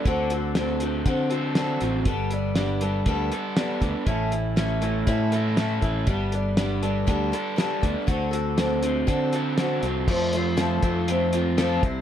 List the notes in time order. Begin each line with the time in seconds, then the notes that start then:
Already playing: D4 A4
0.05 D2 D3 C4 F#4 A4, kick, closed hi-hat
0.30 C4 F#4 A4, closed hi-hat
0.55 D3 C4 F#4 A4, snare, closed hi-hat
0.80 D3 C4 F#4 A4, closed hi-hat
1.05 D3 C4 F#4 A4, kick, closed hi-hat
1.30 C4 F#4 A4, closed hi-hat
1.55 D3 C4 F#4 A4, snare, closed hi-hat
1.81 A1 C4 F#4 A4, closed hi-hat
2.05 G1 G3 B3 D4 A4, kick, closed hi-hat
2.31 B3 D4 A4, closed hi-hat
2.56 G3 B3 D4 A4, snare, closed hi-hat
2.81 G3 B3 D4 A4, closed hi-hat
3.06 D2 G3 B3 D4 A4, kick, closed hi-hat
3.32 B3 D4 A4, closed hi-hat
3.56 G3 B3 D4 A4, snare, closed hi-hat
3.80 D2 B3 D4 A4, kick, closed hi-hat
4.06 A1 A2 A3 C#4 E4 A4, kick, closed hi-hat
4.31 C#4 E4 A4, closed hi-hat
4.56 A3 C#4 E4 A4, snare, closed hi-hat
4.81 A3 C#4 E4 A4, closed hi-hat
5.07 A2 A3 C#4 E4 A4, kick, closed hi-hat
5.32 C#4 E4 A4, closed hi-hat
5.57 A3 C#4 E4 A4, snare, closed hi-hat
5.81 A1 C#4 E4 A4, kick, closed hi-hat
6.07 G1 G3 B3 D4 A4, kick, closed hi-hat
6.32 B3 D4 A4, closed hi-hat
6.57 G3 B3 D4 A4, snare, closed hi-hat
6.82 G3 B3 D4 A4, closed hi-hat
7.07 D2 G3 B3 D4 A4, kick, closed hi-hat
7.32 B3 D4 A4, closed hi-hat
7.56 G3 B3 D4 A4, snare, closed hi-hat
7.81 D2 B3 D4 A4, kick, closed hi-hat
8.07 D2 D3 C4 F#4 A4, kick, closed hi-hat
8.31 C4 F#4 A4, closed hi-hat
8.57 D3 C4 F#4 A4, snare, closed hi-hat
8.82 D3 C4 F#4 A4, closed hi-hat
9.07 D3 C4 F#4 A4, kick, closed hi-hat
9.33 C4 F#4 A4, closed hi-hat
9.58 D3 C4 F#4 A4, snare, closed hi-hat
9.83 C2 C4 F#4 A4, closed hi-hat
10.08 F2 F3 A3 C4 F4 A4, kick, crash
10.33 A3 C4 F4 A4, closed hi-hat
10.57 F3 A3 C4 F4 A4, snare, closed hi-hat
10.83 F2 C4 F4 A4, kick, closed hi-hat
11.08 A3 C4 F4 A4, closed hi-hat
11.33 C4 F4 A4, closed hi-hat
11.58 F3 A3 C4 F4 A4, snare, closed hi-hat
11.83 C2 C3 G3 C4 E4 C5, kick, closed hi-hat